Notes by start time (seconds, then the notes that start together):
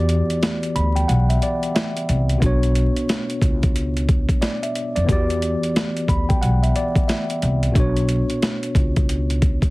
Already playing: E2 E3 B3 F#4 G4 D5
0.09 closed hi-hat
0.30 closed hi-hat
0.43 snare, closed hi-hat
0.63 closed hi-hat
0.76 D2 B5, closed hi-hat
0.96 G5, closed hi-hat
1.08 B1 F#5, closed hi-hat
1.29 E5, closed hi-hat
1.42 D5, closed hi-hat
1.63 closed hi-hat
1.75 E5, snare, closed hi-hat
1.97 closed hi-hat
2.09 C2, closed hi-hat
2.29 closed hi-hat
2.38 B2 B3 D4, kick
2.42 B1 F#4 C#5, closed hi-hat
2.63 closed hi-hat
2.75 closed hi-hat
2.97 closed hi-hat
3.09 snare, closed hi-hat
3.30 closed hi-hat
3.42 C#2, kick, closed hi-hat
3.63 kick, closed hi-hat
3.76 closed hi-hat
3.97 closed hi-hat
4.09 kick, closed hi-hat
4.29 kick, closed hi-hat
4.41 D5, snare, closed hi-hat
4.63 E5, closed hi-hat
4.75 closed hi-hat
4.96 F2 D5, closed hi-hat
5.05 E3 B3 F#4
5.09 E2 G4 D5, kick, closed hi-hat
5.30 closed hi-hat
5.42 closed hi-hat
5.63 closed hi-hat
5.76 snare, closed hi-hat
5.97 closed hi-hat
6.08 D2 B5, kick, closed hi-hat
6.29 G5, kick, closed hi-hat
6.42 B1 F#5, closed hi-hat
6.63 E5, closed hi-hat
6.76 D5, closed hi-hat
6.95 kick, closed hi-hat
7.08 E5, snare, closed hi-hat
7.30 closed hi-hat
7.42 C2, closed hi-hat
7.63 closed hi-hat
7.72 B1 B2 B3 D4, kick
7.76 F#4 C#5, closed hi-hat
7.97 closed hi-hat
8.09 closed hi-hat
8.30 closed hi-hat
8.43 snare, closed hi-hat
8.63 closed hi-hat
8.75 C#2, kick, closed hi-hat
8.96 kick, closed hi-hat
9.09 closed hi-hat
9.30 closed hi-hat
9.42 kick, closed hi-hat
9.62 kick, closed hi-hat